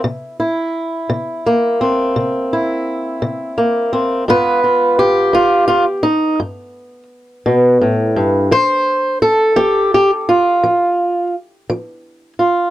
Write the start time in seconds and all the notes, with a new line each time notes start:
Already playing: E4
0.04 C3
0.40 E4
1.10 C3
1.46 A#3
1.81 C4
2.16 C3
2.53 E4
3.22 C3
3.58 A#3
3.93 C4
4.28 G2 B3 F4 B4
4.64 F4
4.99 G4
5.33 G2 F4
5.68 F4
6.03 D#4
6.40 G2
7.46 B2
7.81 A2
8.16 G2
8.51 F3 C5
9.22 A4
9.56 F3 G4
9.94 G4
10.29 F4
10.63 F3
11.70 F3
12.39 F4